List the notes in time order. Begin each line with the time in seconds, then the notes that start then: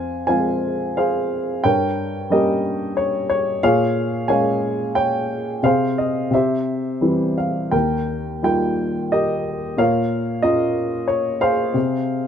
Already playing: F2 C5 F5 G#5
0.27 F3 G#3 C4 C5 F5 G#5
0.97 G#4 C5 F5
1.64 G2 A#4 C#5 G5
2.30 G3 A#3 C#4 G4 A#4 D#5
2.97 C#5
3.30 C#5
3.63 A#2 G#4 C#5 F5
4.28 G#3 A#3 C#4 C#5 F5 G#5
4.95 C#5 G5
5.63 C3 G#4 C5 F5
5.98 D#5
6.31 C3 G4 C5 E5
7.01 E3 G3 C4
7.38 F5
7.71 D#2 A#4 G5
8.43 G3 D#4 F4 A#4 G5
9.12 G4 A#4 D#5
9.77 A#2 A#4 C#5 F5
10.42 A#3 C#4 F4 A#4 D#5
11.08 C#5
11.41 G#4 C5 F5
11.74 C3